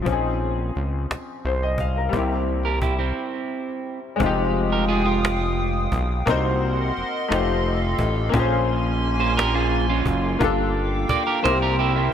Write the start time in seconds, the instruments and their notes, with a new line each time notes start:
0.02 grand piano F3 C4
0.06 analog synth bass A#1, grand piano C#4 D#4, cajon bass
0.12 grand piano G#4
0.75 analog synth bass C#2, cajon slap
1.11 analog synth bass C2, cajon slap
1.45 analog synth bass C2, grand piano C5
1.63 grand piano D#5
1.78 grand piano F5, cajon bass
1.97 grand piano A#4
2.09 grand piano G3 A#3
2.13 analog synth bass C2, grand piano C4 E4, cajon bass
2.19 grand piano G4
2.65 clean electric guitar G4 A#4
2.82 clean electric guitar E4 G4, cajon bass
2.98 clean electric guitar C4 E4
4.16 grand piano G#3 C4, analog synth pad G#3 F5 G5 D#6
4.20 analog synth bass F1, grand piano D#4 F4, cajon bass
4.26 grand piano G4
4.72 clean electric guitar G4 A#4
4.89 clean electric guitar F4 G#4, cajon slap
5.06 clean electric guitar F4
5.25 cajon slap
5.92 analog synth bass B1, cajon bass
6.26 analog synth bass C2, grand piano A#3 C4 D#4 F#4, analog synth pad A#4 D#5 F#5 C6, cajon bass
6.30 grand piano C5
6.96 analog synth bass F1, cajon slap
7.28 analog synth bass F1, grand piano A3 D#4 F4 G4, analog synth pad A4 F5, cajon slap
7.33 grand piano C5
7.99 analog synth bass A1, cajon bass
8.29 grand piano A#3 C#4
8.33 analog synth bass A#1, analog synth pad A#3 C#4 G#5 C6, grand piano F4 G#4, cajon bass
8.39 grand piano C5
9.03 cajon slap
9.20 clean electric guitar G#4 C5
9.37 clean electric guitar G4 A#4, cajon slap
9.54 clean electric guitar F4 G#4
9.89 clean electric guitar C#4 F4
10.06 analog synth bass F#1, cajon bass
10.39 analog synth bass G1, grand piano A#3 D4 F4 G4, analog synth pad F5 G5 D6, cajon bass
10.44 grand piano A4
11.09 analog synth bass C2, clean electric guitar A#4 D5, cajon bass
11.27 clean electric guitar G4 A#4
11.42 analog synth bass C2, grand piano A#3 C4 E4 G4, analog synth pad A#4 E5 C6, clean electric guitar C5, cajon slap
11.47 grand piano A#4
11.62 clean electric guitar G4 A#4
11.79 clean electric guitar E4 G4
11.96 clean electric guitar C4 E4